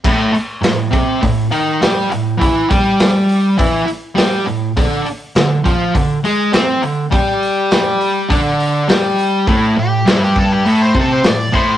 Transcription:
<<
  \new Staff \with { instrumentName = "Lead electric guitar" } { \time 4/4 \key a \minor \tempo 4 = 102 r1 | r1 | r1 | r1 |
r8 g'8 e'16 g'16 a'16 g'16 a'16 c''16 a'16 c''16 d''8 c''8 | }
  \new Staff \with { instrumentName = "Distorted electric guitar" } { \clef bass \time 4/4 \key a \minor <a, a>8 r8 a,8 <c c'>8 a,8 <dis dis'>8 <g g'>8 a,8 | <e e'>8 <g g'>4. <e e'>8 r8 <g g'>8 a,8 | <d d'>8 r8 d8 <f f'>8 d8 <gis gis'>8 <c' c''>8 d8 | <g g'>2 <d d'>4 <g g'>4 |
<a, a>8 a,8 <g, g>4 <a, a>8 <c c'>8 a,8 <a, a>8 | }
  \new DrumStaff \with { instrumentName = "Drums" } \drummode { \time 4/4 <cymc bd>8 hho8 <hho sn>8 <hho bd>8 <hho bd>8 hho8 <hho sn>8 hho8 | <hho bd>8 <hho bd>8 <hho sn>8 hho8 <hho bd>8 hho8 <hho sn>8 hho8 | <hho bd>8 hho8 <hho sn>8 <hho bd>8 <hho bd>8 hho8 <hho sn>8 hho8 | <hho bd>8 hho8 <hho sn>8 hho8 <hho bd>8 hho8 <hho sn>8 hho8 |
<hho bd>4 <hho sn>8 bd8 hho8 bd8 <hho sn>8 bd8 | }
>>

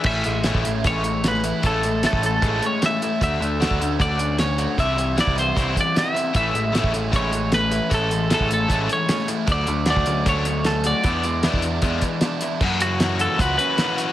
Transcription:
<<
  \new Staff \with { instrumentName = "Clean electric guitar" } { \time 4/4 \key a \major \tempo 4 = 153 e''2 cis''4 b'4 | a'4 a'8 a'4 cis''8 e''4 | e''2 d''4 cis''4 | e''4 d''8 c''4 d''8 e''4 |
e''2 cis''4 b'4 | a'4 a'8 a'4 cis''4 r8 | d''4 d''4 cis''4 a'8 d''8~ | d''2. r4 |
r8 fis'4 a'8 b'8 b'4. | }
  \new Staff \with { instrumentName = "Overdriven electric guitar" } { \time 4/4 \key a \major <e a cis'>8 <e a>8 <e a cis'>8 <e a>8 <e a cis'>8 <e a>8 <e a>8 <e a>8 | <e a cis'>8 <e a>8 <e a cis'>8 <e a>8 <e a cis'>8 <e a>8 <e a>8 <e a>8 | <a d' fis'>8 <a d'>8 <a d' fis'>8 <a d'>8 <a d' fis'>8 <a d'>8 <a d'>8 <a d'>8 | <e c' e'>8 <e c'>8 <e c' e'>8 <e c'>8 <e c' e'>8 <e c'>8 <e c'>8 <e c'>8 |
<e a cis'>8 <e a>8 <e a cis'>8 <e a>8 <e a cis'>8 <e a>8 <e a>8 <e a>8 | <e a cis'>8 <e a>8 <e a cis'>8 <e a>8 <e a cis'>8 <e a>8 <e a>8 <e a>8 | <fis a d'>8 <fis a>8 <fis a d'>8 <fis a>8 <fis a d'>8 <fis a>8 <fis a>8 <fis a>8 | <e b d'>8 <e b>8 <e b d'>8 <e b>8 <e b d'>8 <e b>8 <e b>8 <e b>8 |
<e bes cis' fis'>8 <bes cis' fis'>8 <e bes cis' fis'>8 <bes cis' fis'>8 <e bes cis' fis'>8 <e bes cis' fis'>8 <e bes cis' fis'>8 <bes cis' fis'>8 | }
  \new Staff \with { instrumentName = "Overdriven electric guitar" } { \time 4/4 \key a \major a,8 gis8 e'8 cis'8 gis8 e8 cis'8 e'8 | a,8 gis8 e'8 cis'8 gis8 e8 cis'8 e'8 | d8 a8 fis'8 cis'8 a8 d8 cis'8 fis'8 | c8 g8 e'8 b8 g8 e8 b8 e'8 |
a,8 gis8 e'8 cis'8 gis8 e8 cis'8 e'8 | a,8 gis8 e'8 cis'8 gis8 e8 cis'8 e'8 | d8 a8 fis'8 cis'8 a8 d8 cis'8 fis'8 | e,8 gis8 e'8 d'8 gis8 e8 d'8 e'8 |
fis,8 cis8 e4 fis'8 cis'8 e4 | }
  \new Staff \with { instrumentName = "Picked electric bass" } { \clef bass \time 4/4 \key a \major a,,8 a,,8. a,,16 a,,8 a,,2 | a,,4~ a,,16 a,,8. a,,8 r4. | d,8 d,8. d,16 d,8 d,2 | c,4~ c,16 c,8. c,8 r4. |
a,,8 a,,8. a,,16 a,,8 a,,2 | a,,4~ a,,16 a,,8. a,,8 r4. | d,8 d,8. d,16 d,8 d,2 | e,4~ e,16 e,8. e,8 r4. |
fis,2 cis,8 r4. | }
  \new DrumStaff \with { instrumentName = "Drums" } \drummode { \time 4/4 <cymc bd>8 hh8 <hh sn>16 bd16 hh8 <hh bd>8 hh8 <hh sn>16 sn16 hh8 | <hh bd>8 hh8 <hh sn>16 bd16 hh8 <hh bd>8 hh8 <hh sn>8 hh8 | <hh bd>8 hh8 <hh sn>16 bd16 hh8 <hh bd>8 hh8 <hh sn>8 hh8 | <hh bd>8 hh8 <hh sn>16 bd16 hh8 <hh bd>8 <hh bd>8 <hh sn>8 hh8 |
<hh bd>8 hh8 <hh sn>16 bd16 hh8 <hh bd>8 hh8 <hh sn>8 hh8 | <hh bd>8 hh8 <hh sn>16 bd16 hh8 <hh bd>8 hh8 <hh sn>16 sn16 hh8 | <hh bd>8 hh8 <hh sn>16 bd16 hh8 <hh bd>8 hh8 <hh sn>8 hh8 | <hh bd>8 hh8 <hh sn>16 bd16 hh8 <hh bd>8 <hh bd>8 <hh sn>8 hh8 |
<cymc bd>8 hh8 <hh sn>8 hh8 <hh bd>8 hh8 <hh sn>8 hh8 | }
>>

